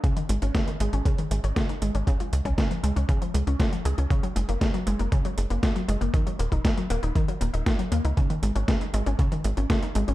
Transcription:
<<
  \new Staff \with { instrumentName = "Synth arpeggio sound" } { \clef bass \time 4/4 \key aes \dorian \tempo 4 = 118 des16 ees16 aes16 des'16 des16 ees16 aes16 des'16 des16 ees16 aes16 des'16 des16 ees16 aes16 des'16 | des16 f16 aes16 des'16 des16 f16 aes16 des'16 des16 f16 aes16 des'16 des16 f16 aes16 des'16 | des16 ges16 aes16 bes16 des16 ges16 aes16 bes16 des16 ges16 aes16 bes16 des16 ges16 aes16 bes16 | ees16 ges16 bes16 ees'16 ees16 ges16 bes16 ees'16 ees16 ges16 bes16 ees'16 ees16 ges16 bes16 ees'16 |
des16 ees16 aes16 des'16 des16 ees16 aes16 des'16 des16 ees16 aes16 des'16 des16 ees16 aes16 des'16 | }
  \new Staff \with { instrumentName = "Analog synth bass" } { \clef bass \time 4/4 \key aes \dorian r8 aes,,16 aes,,16 r8 aes,,16 aes,,16 r8 aes,,16 aes,,16 r8 aes,,16 aes,,16 | r8 des,16 des,16 r8 des,16 des,16 r8 des,16 des,16 r8 des,16 des,16 | r8 ges,,16 ges,,16 r8 ges,,16 ges,,16 r8 ges,,16 ges,,16 r8 ges,,16 ges,,16 | r8 ees,,16 ees,,16 r8 ees,,16 ees,,16 r8 ees,,16 ees,,16 r8 ees,16 des,16 |
r8 aes,,16 aes,,16 r8 aes,,16 aes,,16 r8 aes,,16 aes,,16 r8 aes,,16 aes,,16 | }
  \new DrumStaff \with { instrumentName = "Drums" } \drummode { \time 4/4 <hh bd>16 hh16 hh16 hh16 <hh bd sn>16 hh16 hh16 hh16 <hh bd>16 hh16 hh16 hh16 <hh bd sn>16 hh16 hh16 hh16 | <hh bd>16 hh16 hh16 <hh bd>16 <hh bd sn>16 hh16 hh16 hh16 <hh bd>16 hh16 hh16 hh16 <hh bd sn>16 hh16 hh16 hh16 | <hh bd>16 hh16 hh16 hh16 <hh bd sn>16 hh16 hh16 hh16 <hh bd>16 hh16 hh16 hh16 <hh bd sn>16 hh16 hh16 hh16 | <hh bd>16 hh16 hh16 <hh bd>16 <hh bd sn>16 hh16 hh16 hh16 <hh bd>16 hh16 hh16 hh16 <hh bd sn>16 hh16 hh16 hh16 |
<hh bd>16 hh16 hh16 hh16 <hh bd sn>16 hh16 hh16 hh16 <hh bd>16 hh16 hh16 hh16 <hh bd sn>16 hh16 hh16 hh16 | }
>>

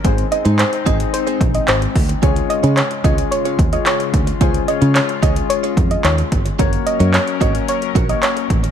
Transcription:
<<
  \new Staff \with { instrumentName = "Synth pluck" } { \time 4/4 \key des \major \tempo 4 = 110 r8 ees''16 r16 c''8 ees''16 r16 c''16 r8 ees''16 c''8. r16 | r8 ees''16 r16 des''8 ees''16 r16 des''16 r8 ees''16 des''8. r16 | r8 ees''16 r16 des''8 ees''16 r16 des''16 r8 ees''16 des''8. r16 | r8 ees''16 r16 des''8 ees''16 r16 des''16 r8 ees''16 des''8. r16 | }
  \new Staff \with { instrumentName = "Clean electric guitar" } { \time 4/4 \key des \major <c' ees' aes' c''>8 r16 <c' ees' aes' c''>16 r8 <c' ees' aes' c''>8 r16 <c' ees' aes' c''>8 r4 r16 | <des' f' aes' des''>8 r16 <des' f' aes' des''>16 r8 <des' f' aes' des''>8 r16 <des' f' aes' des''>8 r4 r16 | <des' f' aes' des''>8 r16 <des' f' aes' des''>16 r8 <des' f' aes' des''>8 r16 <des' f' aes' des''>8 r4 r16 | <des' ges' bes' des''>8 r16 <des' ges' bes' des''>16 r8 <des' ges' bes' des''>8 r8 <des' ges' bes' des''>8 r4 | }
  \new Staff \with { instrumentName = "Grand piano" } { \time 4/4 \key des \major <aes c' ees' aes' c''>16 r16 <aes c' ees' aes' ees''>8. r16 <aes c' ees' aes' c''>4. r4 | <aes des' f' aes' des''>4 r8 <aes des' f' aes' des''>8. r8 <aes des' f' aes' des''>8. r8 | <aes des' f' aes' c''>16 r16 <aes des' f' aes' des''>8. r16 <aes des' f' aes' ees''>4. r4 | <bes des' ges' bes' des''>4 r8 <bes des' ges' bes' des''>8. r8 <bes des' ges' bes' des''>8. r8 | }
  \new Staff \with { instrumentName = "Analog synth pad" } { \time 4/4 \key des \major <aes c' ees'>1 | <des f'>1~ | <des f'>1 | <ges des' bes'>1 | }
  \new Staff \with { instrumentName = "Fingered electric bass" } { \clef bass \time 4/4 \key des \major aes,,8 r16 aes,8 r16 aes,,8 r8 bes,,8 aes,,8 d,8 | des,8 r16 des8 r16 des,8 r8 ees,8 r8 d,8 | des,8 r16 des8 r16 des,8 r8 f,8 ees,8 g,,8 | ges,,8 r16 ges,8 r16 aes,,8 r8 bes,,8 r8 a,,8 | }
  \new DrumStaff \with { instrumentName = "Drums" } \drummode { \time 4/4 <hh bd>16 hh16 hh16 hh16 <hc hh>16 hh16 <hh bd>16 hh16 hh16 hh16 <hh bd>16 hh16 <hc hh>16 hh16 <hho bd>16 hh16 | <hh bd>16 hh16 hh16 hh16 <hc hh>16 hh16 <hh bd>16 hh16 hh16 hh16 <hh bd>16 hh16 <hc hh>16 hh16 <hh bd>16 hh16 | <hh bd>16 hh16 hh16 hh16 <hc hh>16 hh16 <hh bd>16 hh16 hh16 hh16 <hh bd>16 hh16 <hc hh>16 hh16 <hh bd>16 hh16 | <hh bd>16 hh16 hh16 hh16 <hc hh>16 hh16 <hh bd>16 hh16 hh16 hh16 <hh bd>16 hh16 <hc hh>16 hh16 <hh bd>16 hh16 | }
>>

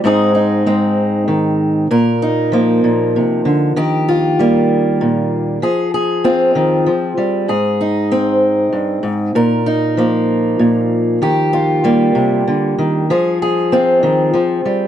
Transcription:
\new Staff \with { instrumentName = "Steel-string acoustic guitar" } { \clef bass \time 6/8 \key aes \lydian \tempo 4. = 64 << { <aes c' ees' aes'>8 ees'8 c'2 | bes'8 ees'8 bes2 | g'8 f'8 bes2 | aes'8 aes'8 f'2 |
aes'8 ees'8 c'2 | bes'8 ees'8 bes2 | g'8 f'8 bes2 | aes'8 aes'8 f'2 | } \\ { aes,4 aes4 ees4 | bes,4 f8 bes,8 c8 d8 | ees4 g4 bes,4 | f4 c'8 ees8 f8 g8 |
aes,2 g,8 aes,8 | bes,4 f4 bes,4 | ees4 g8 c8 d8 ees8 | f4 c'8 ees8 f8 g8 | } >> }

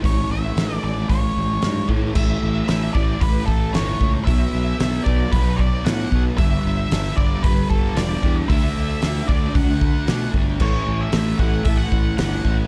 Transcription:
<<
  \new Staff \with { instrumentName = "Lead electric guitar" } { \time 4/4 \key a \mixolydian \tempo 4 = 114 cis''8 e''4 d''8 cis''4. r8 | e''4 e''8 d''8 b'8 a'8 cis''8. r16 | e''4. d''8 b'8 d''8 fis''8. r16 | e''4. d''8 b'8 a'8 d''8. r16 |
e''4. d''8 fis''4. r8 | cis''8. e''8. fis''8 e''16 fis''8. fis''8. r16 | }
  \new Staff \with { instrumentName = "Distorted electric guitar" } { \clef bass \time 4/4 \key a \mixolydian <a, e a>2.~ <a, e a>8 <a, e a>8 | <a, e a>4 <a, e a>8 <e a>8 <a, e a>4 <a, e a>8 <e a>8 | <b, fis b>4 <b, fis b>8 <fis b>8 <b, fis b>4 <b, fis b>8 <fis b>8 | <g, d g>4 <g, d g>8 <d g>8 <g, d g>4 <g, d g>8 <d g>8 |
<d a d'>4 <d a d'>8 <a d'>8 <d a d'>4 <d a d'>8 <a d'>8 | <a, e a>4 <a, e a>8 <e a>8 <a, e a>4 <a, e a>8 <e a>8 | }
  \new Staff \with { instrumentName = "Fingered electric bass" } { \clef bass \time 4/4 \key a \mixolydian a,,8 a,,8 a,,8 a,,8 a,,8 a,,8 g,8 a,8 | a,,8 a,,8 a,,8 a,,8 a,,8 a,,8 g,,8 cis,8 | b,,8 b,,8 b,,8 b,,8 b,,4 a,8 b,,8 | g,,8 g,,8 g,,8 g,,8 g,,8 g,,8 e,,8 e,8 |
d,8 d,8 d,8 d,8 d,4 b,8 g,,8 | a,,8 a,,8 a,,8 a,,8 a,,8 a,,8 g,,8 a,,8 | }
  \new DrumStaff \with { instrumentName = "Drums" } \drummode { \time 4/4 <hho bd>4 <hho sn>4 <hho bd>4 <hho sn>8 bd8 | <cymc bd>4 <hho sn>8 bd8 <hho bd>8 bd8 <hho sn>8 bd8 | <hho bd>4 <hho sn>8 bd8 <hho bd>8 bd8 <hho sn>8 bd8 | <hho bd>4 <hho sn>8 bd8 <hho bd>8 bd8 <hho sn>8 bd8 |
<hho bd>4 <hho sn>8 bd8 <hho bd>8 bd8 <hho sn>8 bd8 | <cymc bd>4 <hho sn>8 bd8 <hho bd>8 bd8 <hho sn>8 bd8 | }
>>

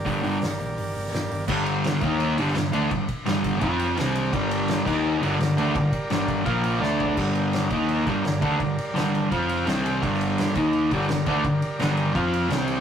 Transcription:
<<
  \new Staff \with { instrumentName = "Transistor combo organ" } { \time 4/4 \key g \minor \tempo 4 = 169 << { r1 | r1 | r1 | r1 |
r2 r8 g''8 a''8 a''8 | r1 | r1 | r1 |
r1 | } \\ { <g' bes' d''>1 | r1 | r1 | <g' bes' d''>4. <ees' bes' ees''>4 <g' bes' d''>4.~ |
<g' bes' d''>2 <f' bes' f''>4 <d' a' d''>4 | <g' bes' d''>4. <ees' bes' ees''>4 <g' bes' d''>4.~ | <g' bes' d''>2 <f' c'' f''>4 <g' c'' g''>4 | <g' bes' d''>4. <ees' bes' ees''>4 <g' bes' d''>4.~ |
<g' bes' d''>2 <f' c'' f''>4 <g' c'' g''>4 | } >> }
  \new Staff \with { instrumentName = "Distorted electric guitar" } { \clef bass \time 4/4 \key g \minor <g, d g>8 <g, d g>8 r2. | <g, d g>4. <ees bes ees'>4 <g, d g>8 <g, d>8 <d a d'>8 | <g, d>8 r8 <g, d g>4 <f c' f'>4 <c g c'>4 | <g, d g>4. <ees bes ees'>4 <g, d g>8 <g, d>8 <d a d'>8 |
<g, d>8 r8 <g, d g>4 <bes, f bes>4 <d a d'>4 | <g, d g>4. <ees bes ees'>4 <g, d g>8 <g, d>8 <d a d'>8 | <g, d>8 r8 <g, d g>4 <f c' f'>4 <c g c'>4 | <g, d g>4. <ees bes ees'>4 <g, d g>8 <g, d>8 <d a d'>8 |
<g, d>8 r8 <g, d g>4 <f c' f'>4 <c g c'>4 | }
  \new Staff \with { instrumentName = "Picked electric bass" } { \clef bass \time 4/4 \key g \minor g,,8 g,,8 g,,8 bes,,8 g,,8 g,,8 g,,8 g,,8 | g,,4. ees,4 g,,8 g,,8 d,8 | g,,8 r8 g,,4 f,4 c,4 | g,,4. ees,4 g,,8 g,,8 d,8 |
g,,8 r8 g,,4 bes,,4 d,4 | g,,4. ees,4 g,,8 g,,8 d,8 | g,,8 r8 g,,4 f,4 c,4 | g,,4. ees,4 g,,8 g,,8 d,8 |
g,,8 r8 g,,4 f,4 c,4 | }
  \new DrumStaff \with { instrumentName = "Drums" } \drummode { \time 4/4 <hho bd>8 hho8 <hho sn>8 hho8 hho8 hho16 sn16 <hho sn>16 sn16 hho8 | <cymc bd>8 cymr8 <cymr sn>8 <bd cymr>8 cymr8 cymr16 sn16 <cymr sn>8 cymr8 | <bd cymr>8 <bd cymr>8 <cymr sn>8 <bd cymr>8 <bd cymr>8 cymr8 <cymr sn>8 cymr8 | <bd cymr>8 cymr8 <cymr sn>8 <cymc bd>8 r8 cymr8 <cymr sn>8 cymr8 |
<bd cymr>8 <bd cymr>8 <cymr sn>8 <bd cymr>8 <bd cymr>8 cymr8 sn8 tomfh8 | <cymc bd>8 cymr8 <cymr sn>8 <bd cymr>8 cymr8 <bd cymr>8 <cymr sn>8 <bd cymr>8 | <bd cymr>8 cymr8 <cymr sn>8 cymr8 <bd cymr>8 cymr8 <cymr sn>8 cymr8 | <bd cymr>16 sn16 cymr8 <cymr sn>8 <bd cymr>8 cymr8 <bd cymr>16 sn16 <cymr sn>8 <bd cymr>8 |
<bd cymr>8 cymr8 <cymr sn>8 cymr8 <bd cymr>8 cymr8 <cymr sn>8 cymr8 | }
>>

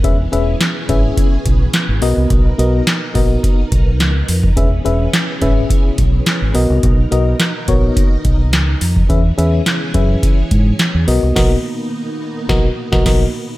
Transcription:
<<
  \new Staff \with { instrumentName = "FM electric piano" } { \time 4/4 \key b \major \tempo 4 = 106 <cis' gis' b' e''>16 r16 <cis' gis' b' e''>8 r8 <cis' gis' b' e''>8. r4 r16 <b fis' ais' dis''>8~ | <b fis' ais' dis''>16 r16 <b fis' ais' dis''>8 r8 <b fis' ais' dis''>8. r4. r16 | <cis' gis' b' e''>16 r16 <cis' gis' b' e''>8 r8 <cis' gis' b' e''>8. r4 r16 <b fis' ais' dis''>8~ | <b fis' ais' dis''>16 r16 <b fis' ais' dis''>8 r8 <b fis' ais' cis''>8. r4. r16 |
<cis' gis' b' e''>16 r16 <cis' gis' b' e''>8 r8 <cis' gis' b' e''>8. r4 r16 <b fis' ais' dis''>8 | <b fis' ais' dis''>8 r4. <b fis' ais' dis''>8 r16 <b fis' ais' dis''>16 <b fis' ais' dis''>8 r8 | }
  \new Staff \with { instrumentName = "String machine" } { \time 4/4 \key b \major << { <e gis'>2.~ <e gis'>8 <dis' ais'>8~ | <dis' ais'>1 | <e gis'>2.~ <e gis'>8 <dis' ais'>8~ | <dis' ais'>1 |
<e gis'>2.~ <e gis'>8 <ais dis'>8~ | <ais dis'>1 | } \\ { <b cis'>1~ | <b cis'>1 | cis'2.~ cis'8 r8 | r1 |
cis'2.~ cis'8 b8~ | b1 | } >> }
  \new Staff \with { instrumentName = "Fingered electric bass" } { \clef bass \time 4/4 \key b \major e,,8 e,,8 r8 gis,,8 r8 b,,8 r16 gis,,16 b,,16 c,16 | b,,8 b,,8 r8 ais,,8 r8 b,,8 cis,8 eis,8 | e,,8 e,,8 r8 gis,,8 r8 b,,8 r16 gis,,16 b,,16 c,16 | b,,8 b,,8 r8 ais,,8 r8 b,,8 cis,8 eis,8 |
e,8 e,8 r8 fis,8 r8 gis,8 r16 e,16 b,,16 c,16 | b,,8 r4. b,,8 r16 b,,16 b,,8 r8 | }
  \new DrumStaff \with { instrumentName = "Drums" } \drummode { \time 4/4 <hh bd>8 hh8 <hc hh sn>8 <hh bd>8 <hh bd>8 <hh bd>8 <hc hh sn>8 hho8 | <hh bd>8 hh8 <hc hh sn>8 <hho bd>8 <hh bd>8 <hh bd>8 <hc hh sn>8 hho16 bd16 | <hh bd>8 hh8 <hc hh sn>8 <hh bd>8 <hh bd>8 <hh bd>8 <hc hh sn>8 hho8 | <hh bd>8 hh8 <hc hh sn>8 <hh bd>8 <hh bd>8 <hh bd>8 <hc hh sn>8 hho16 bd16 |
<hh bd>8 hh8 <hc hh sn>8 <hh bd>8 <hh bd>8 <hh bd>8 <hc hh sn>8 hho8 | <cymc bd sn>4 r4 <bd sn>8. <bd sn>16 <cymc bd sn>4 | }
>>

